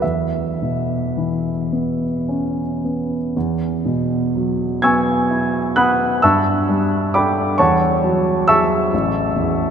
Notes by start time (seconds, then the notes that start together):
0.02 E2 E5
0.62 B2
1.17 E3
1.73 B3
2.28 C#4
2.85 B3
3.37 E2
3.85 B2
4.36 F#3
4.82 B3 G#5 C#6 E6 G#6
5.31 E4
5.76 B3 F#5 B5 D#6 F#6
6.22 G2 E5 A5 C#6 E6
6.69 G3
7.14 D4 A4 D5 G5 B5 D6
7.58 E2 C#5 F#5 A5 C#6
8.04 F#3
8.48 E4 G#4 E5 A5 C#6 E6
8.93 A1
9.36 E2